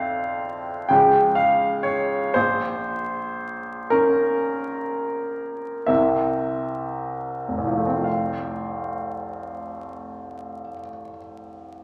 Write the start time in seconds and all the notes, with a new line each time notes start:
Already playing: F2 C4 A4 C5 E5 F5
0.89 C#2 F3 C#4 G#4 G5
1.35 F5
1.83 C#5
2.34 A#1 C5
3.90 C#4 A#4
5.86 C2 C3 C4 A#4 E5
7.48 F1
7.58 C2
7.67 F3
7.77 A3
7.86 C4
7.96 F4
8.04 F5